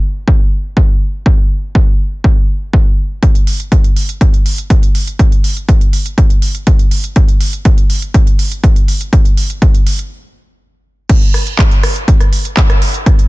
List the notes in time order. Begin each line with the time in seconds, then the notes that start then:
0.28 kick
0.77 kick
1.26 kick
1.75 kick
2.24 kick
2.73 kick
3.23 kick, closed hi-hat
3.35 closed hi-hat
3.47 open hi-hat
3.60 closed hi-hat
3.72 kick, closed hi-hat
3.84 closed hi-hat
3.96 open hi-hat
4.09 closed hi-hat
4.21 kick, closed hi-hat
4.34 closed hi-hat
4.46 open hi-hat
4.58 closed hi-hat
4.70 kick, closed hi-hat
4.83 closed hi-hat
4.95 open hi-hat
5.07 closed hi-hat
5.19 kick, closed hi-hat
5.32 closed hi-hat
5.44 open hi-hat
5.57 closed hi-hat
5.69 kick, closed hi-hat
5.81 closed hi-hat
5.93 open hi-hat
6.06 closed hi-hat
6.18 kick, closed hi-hat
6.30 closed hi-hat
6.42 open hi-hat
6.55 closed hi-hat
6.67 kick, closed hi-hat
6.79 closed hi-hat
6.91 open hi-hat
7.04 closed hi-hat
7.16 kick, closed hi-hat
7.28 closed hi-hat
7.41 open hi-hat
7.53 closed hi-hat
7.65 kick, closed hi-hat
7.78 closed hi-hat
7.90 open hi-hat
8.02 closed hi-hat
8.14 kick, closed hi-hat
8.27 closed hi-hat
8.39 open hi-hat
8.52 closed hi-hat
8.64 kick, closed hi-hat
8.76 closed hi-hat
8.88 open hi-hat
9.01 closed hi-hat
9.13 kick, closed hi-hat
9.25 closed hi-hat
9.37 open hi-hat
9.50 closed hi-hat
9.62 kick, closed hi-hat
9.75 closed hi-hat
9.87 open hi-hat
9.99 closed hi-hat
11.09 kick, closed hi-hat, crash
11.22 closed hi-hat
11.34 cross-stick, open hi-hat
11.47 closed hi-hat
11.59 kick, clap, closed hi-hat
11.71 closed hi-hat
11.83 cross-stick, open hi-hat
11.96 closed hi-hat
12.08 kick, closed hi-hat
12.20 cross-stick, closed hi-hat
12.33 open hi-hat
12.45 closed hi-hat
12.57 kick, clap, closed hi-hat
12.70 cross-stick, closed hi-hat
12.82 open hi-hat
12.94 closed hi-hat
13.06 kick, cross-stick, closed hi-hat
13.19 closed hi-hat